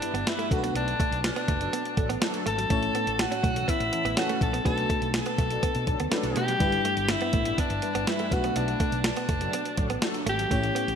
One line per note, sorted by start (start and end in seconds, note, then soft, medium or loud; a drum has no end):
0.00 0.52 G2 medium
0.00 0.13 G3 medium
0.00 0.47 B3 medium
0.00 0.29 D4 medium
0.00 0.47 E4 medium
0.00 0.13 E4 medium
0.00 0.48 G4 medium
0.00 0.13 B4 medium
0.00 0.48 D5 medium
0.00 muted clean electric guitar stroke soft
0.00 closed hi-hat medium
0.14 0.23 G1 medium
0.14 0.23 B3 medium
0.14 closed hi-hat soft
0.27 0.47 G3 medium
0.27 0.47 E4 medium
0.27 0.52 E4 medium
0.27 0.47 B4 loud
0.27 snare loud
0.27 closed hi-hat medium
0.39 0.48 A3 medium
0.39 closed hi-hat soft
0.50 0.69 B1 medium
0.50 1.20 B2 medium
0.50 2.42 A3 medium
0.50 2.42 D4 medium
0.50 2.42 F#4 medium
0.50 0.74 F#4 medium
0.50 0.57 A4 medium
0.50 muted clean electric guitar stroke soft
0.50 kick medium
0.50 closed hi-hat medium
0.58 2.46 B4 medium
0.64 0.73 B3 medium
0.64 closed hi-hat soft
0.75 0.93 B1 loud
0.75 0.85 B3 medium
0.75 1.21 D4 medium
0.75 closed hi-hat medium
0.88 muted clean electric guitar stroke soft
0.88 closed hi-hat soft
1.00 1.09 A3 medium
1.00 kick medium
1.00 closed hi-hat medium
1.11 1.30 B1 medium
1.11 closed hi-hat soft
1.24 2.19 D4 medium
1.24 muted clean electric guitar stroke soft
1.24 snare loud
1.24 closed hi-hat medium
1.36 1.45 B3 medium
1.36 closed hi-hat soft
1.48 1.67 F#1 medium
1.48 1.58 A3 medium
1.48 kick medium
1.48 closed hi-hat medium
1.61 1.71 F#3 medium
1.61 1.71 D4 medium
1.61 1.71 A4 medium
1.61 closed hi-hat medium
1.73 1.82 B3 medium
1.73 closed hi-hat medium
1.85 closed hi-hat soft
1.97 2.16 A1 medium
1.97 2.08 F#3 medium
1.97 2.08 D4 medium
1.97 2.08 A4 medium
1.97 muted clean electric guitar stroke soft
1.97 kick medium
1.97 closed hi-hat medium
2.09 2.19 B3 medium
2.09 closed hi-hat medium
2.21 2.42 F#3 medium
2.21 2.42 D4 medium
2.21 2.42 A4 loud
2.21 muted clean electric guitar stroke soft
2.21 snare loud
2.21 closed hi-hat medium
2.34 closed hi-hat soft
2.46 2.64 G#1 medium
2.46 2.55 A3 medium
2.46 3.22 A4 loud
2.46 closed hi-hat medium
2.58 2.67 F#3 medium
2.58 closed hi-hat medium
2.69 2.89 A1 loud
2.69 3.40 A2 medium
2.69 4.13 A3 medium
2.69 2.80 A3 medium
2.69 4.14 C#4 medium
2.69 4.14 E4 medium
2.69 4.15 C#5 medium
2.69 kick medium
2.69 closed hi-hat medium
2.83 muted clean electric guitar stroke soft
2.83 closed hi-hat soft
2.95 3.04 B3 medium
2.95 closed hi-hat medium
3.07 3.25 A1 medium
3.07 closed hi-hat soft
3.19 3.71 F#4 medium
3.19 muted clean electric guitar stroke soft
3.19 snare loud
3.19 closed hi-hat medium
3.32 3.41 C#4 medium
3.32 closed hi-hat soft
3.43 3.62 B1 medium
3.43 3.52 A3 medium
3.43 kick medium
3.43 closed hi-hat medium
3.56 3.66 E3 medium
3.56 3.66 C#4 medium
3.56 3.66 A4 medium
3.56 closed hi-hat medium
3.68 3.77 B3 medium
3.68 4.17 E4 medium
3.68 kick medium
3.68 closed hi-hat medium
3.80 3.89 A1 medium
3.80 closed hi-hat soft
3.92 4.03 E3 medium
3.92 4.03 C#4 medium
3.92 4.03 A4 medium
3.92 muted clean electric guitar stroke soft
3.92 closed hi-hat medium
4.05 4.14 A1 medium
4.05 4.14 B3 medium
4.05 closed hi-hat medium
4.16 4.37 E3 medium
4.16 4.62 A3 soft
4.16 4.65 C#4 soft
4.16 4.38 C#4 medium
4.16 4.65 E4 soft
4.16 4.40 F#4 medium
4.16 4.38 A4 loud
4.16 4.66 C#5 soft
4.16 snare loud
4.16 closed hi-hat medium
4.29 4.38 A3 medium
4.29 closed hi-hat soft
4.41 4.59 A#1 medium
4.41 4.64 A4 medium
4.41 muted clean electric guitar stroke soft
4.41 kick medium
4.41 closed hi-hat medium
4.53 4.63 B3 medium
4.53 closed hi-hat soft
4.63 4.84 B1 loud
4.63 5.34 B2 medium
4.63 6.08 A3 medium
4.63 4.75 B3 medium
4.63 6.08 D4 medium
4.63 6.09 F#4 medium
4.63 5.11 A4 loud
4.63 6.09 B4 medium
4.63 kick medium
4.63 closed hi-hat medium
4.78 muted clean electric guitar stroke soft
4.78 closed hi-hat soft
4.90 4.99 A3 medium
4.90 kick medium
4.90 closed hi-hat medium
5.01 5.20 B1 medium
5.01 closed hi-hat soft
5.14 6.09 A4 medium
5.14 muted clean electric guitar stroke soft
5.14 snare loud
5.14 closed hi-hat medium
5.26 5.36 B3 medium
5.26 closed hi-hat soft
5.38 5.57 B1 medium
5.38 5.48 A3 medium
5.38 kick medium
5.38 closed hi-hat medium
5.50 5.61 F#3 medium
5.50 5.61 D4 medium
5.50 5.61 A4 medium
5.50 closed hi-hat medium
5.63 5.72 B3 medium
5.63 kick medium
5.63 closed hi-hat medium
5.75 5.84 B2 medium
5.75 closed hi-hat soft
5.87 5.97 B1 medium
5.87 5.98 F#3 medium
5.87 5.98 D4 medium
5.87 5.98 A4 medium
5.87 muted clean electric guitar stroke soft
5.87 kick medium
5.87 closed hi-hat medium
6.00 6.09 D2 medium
6.00 6.09 B3 medium
6.00 closed hi-hat medium
6.11 6.43 F#3 medium
6.11 6.60 A3 medium
6.11 6.17 C#4 soft
6.11 6.43 D4 medium
6.11 6.61 F#4 soft
6.11 6.43 A4 loud
6.11 6.60 B4 medium
6.11 muted clean electric guitar stroke soft
6.11 snare medium
6.11 closed hi-hat medium
6.17 6.58 D4 soft
6.23 6.33 B1 medium
6.23 closed hi-hat soft
6.36 6.54 B2 medium
6.36 6.46 A3 medium
6.36 7.12 G4 loud
6.36 closed hi-hat medium
6.48 6.58 F#3 medium
6.48 closed hi-hat soft
6.59 6.79 G1 loud
6.59 7.30 G2 medium
6.59 8.27 G3 medium
6.59 6.70 G3 medium
6.59 8.27 D4 medium
6.59 8.28 E4 medium
6.59 8.28 B4 medium
6.59 kick medium
6.59 closed hi-hat medium
6.72 muted clean electric guitar stroke soft
6.72 closed hi-hat soft
6.85 6.94 A3 medium
6.85 closed hi-hat medium
6.97 7.15 G1 medium
6.97 closed hi-hat soft
7.09 7.61 E4 medium
7.09 muted clean electric guitar stroke soft
7.09 snare loud
7.09 closed hi-hat medium
7.21 7.31 B3 medium
7.21 closed hi-hat soft
7.33 7.52 A1 medium
7.33 7.43 A3 medium
7.33 kick medium
7.33 closed hi-hat medium
7.45 7.56 G3 medium
7.45 7.56 E4 medium
7.45 7.56 B4 medium
7.45 closed hi-hat medium
7.58 7.67 B3 medium
7.58 8.10 D4 medium
7.58 kick medium
7.58 closed hi-hat medium
7.70 7.80 G1 medium
7.70 closed hi-hat soft
7.82 7.93 G3 medium
7.82 7.93 E4 medium
7.82 7.93 B4 medium
7.82 muted clean electric guitar stroke soft
7.82 closed hi-hat medium
7.95 8.04 G1 medium
7.95 8.04 B3 medium
7.95 closed hi-hat medium
8.06 8.28 G3 medium
8.06 8.27 E4 medium
8.06 8.35 E4 medium
8.06 8.28 B4 loud
8.06 snare loud
8.06 closed hi-hat medium
8.19 8.29 A3 medium
8.19 closed hi-hat soft
8.30 8.50 B1 medium
8.30 9.01 B2 medium
8.30 10.22 A3 medium
8.30 10.22 D4 soft
8.30 10.23 F#4 medium
8.30 8.58 F#4 medium
8.30 10.23 B4 medium
8.30 muted clean electric guitar stroke soft
8.30 kick loud
8.30 closed hi-hat medium
8.44 8.53 B3 medium
8.44 closed hi-hat soft
8.56 8.74 B1 medium
8.56 8.65 B3 medium
8.56 9.05 D4 medium
8.56 closed hi-hat medium
8.68 muted clean electric guitar stroke soft
8.68 closed hi-hat soft
8.80 8.89 A3 medium
8.80 kick medium
8.80 closed hi-hat medium
8.92 9.11 B1 medium
8.92 closed hi-hat soft
9.04 9.99 D4 medium
9.04 muted clean electric guitar stroke soft
9.04 snare loud
9.04 closed hi-hat medium
9.16 9.26 B3 medium
9.16 closed hi-hat soft
9.29 9.47 F#1 medium
9.29 9.38 A3 medium
9.29 kick medium
9.29 closed hi-hat medium
9.41 9.52 F#3 medium
9.41 9.52 D4 medium
9.41 9.51 A4 medium
9.41 closed hi-hat medium
9.53 9.63 B3 medium
9.53 closed hi-hat medium
9.65 closed hi-hat soft
9.77 9.96 A1 medium
9.77 9.88 F#3 medium
9.77 9.88 D4 medium
9.77 9.88 A4 medium
9.77 muted clean electric guitar stroke soft
9.77 kick medium
9.77 closed hi-hat medium
9.90 9.99 B3 medium
9.90 closed hi-hat medium
10.02 10.23 F#3 medium
10.02 10.23 D4 medium
10.02 10.23 A4 loud
10.02 muted clean electric guitar stroke soft
10.02 snare loud
10.02 closed hi-hat medium
10.14 closed hi-hat soft
10.26 10.45 G#1 medium
10.26 10.36 A3 medium
10.26 10.95 G4 loud
10.26 closed hi-hat medium
10.39 10.48 F#3 medium
10.39 closed hi-hat soft
10.50 10.69 A1 medium
10.50 10.95 A2 medium
10.50 10.95 A3 medium
10.50 10.60 A3 medium
10.50 10.95 C#4 medium
10.50 10.95 E4 medium
10.50 10.95 C#5 medium
10.50 kick medium
10.50 closed hi-hat medium
10.63 muted clean electric guitar stroke soft
10.63 closed hi-hat soft
10.75 10.84 B3 medium
10.75 closed hi-hat medium
10.88 10.95 A1 medium
10.88 closed hi-hat soft